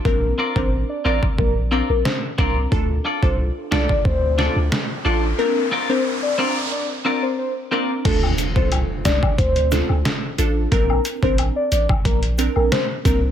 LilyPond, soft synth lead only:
\new Staff \with { instrumentName = "Soft synth lead" } { \time 4/4 \key d \minor \tempo 4 = 90 bes'8 r16 c''16 r16 d''16 d''16 r16 bes'16 r8 bes'16 c''16 r16 bes'16 r16 | a'16 r8 c''16 r8 d''16 d''16 c''8. r4 r16 | bes'8 r16 c''16 r16 d''16 c''16 r16 d''16 r8 c''16 c''16 r16 bes'16 r16 | a'16 r8 c''16 r8 d''16 d''16 c''8. r4 r16 |
bes'8 r16 c''16 r16 d''16 d''16 r16 bes'16 r8 bes'16 c''16 r16 bes'16 r16 | }